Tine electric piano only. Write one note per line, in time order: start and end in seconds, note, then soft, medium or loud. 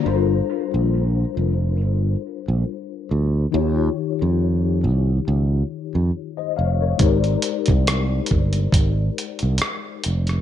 0.02 3.47 G3 medium
0.02 3.47 D4 medium
0.02 3.48 F4 medium
0.02 3.48 A4 medium
0.02 3.49 A#4 medium
0.06 3.49 C5 medium
3.50 6.95 D#3 medium
3.50 6.96 D#4 medium
3.50 6.96 F4 medium
3.50 3.60 F#4 soft
3.55 6.11 C#5 medium
3.60 6.98 G4 medium
6.37 6.56 C5 soft
6.37 6.56 D#5 medium
6.57 6.79 C#5 medium
6.57 6.79 F5 medium
6.81 6.99 A#4 soft
6.81 7.01 C#5 medium
6.97 10.41 G#3 medium
6.97 10.41 D#4 medium
6.97 10.41 G4 medium
6.97 10.41 A#4 medium
7.01 10.41 C5 medium
7.01 7.08 C#5 medium
7.08 10.41 D5 medium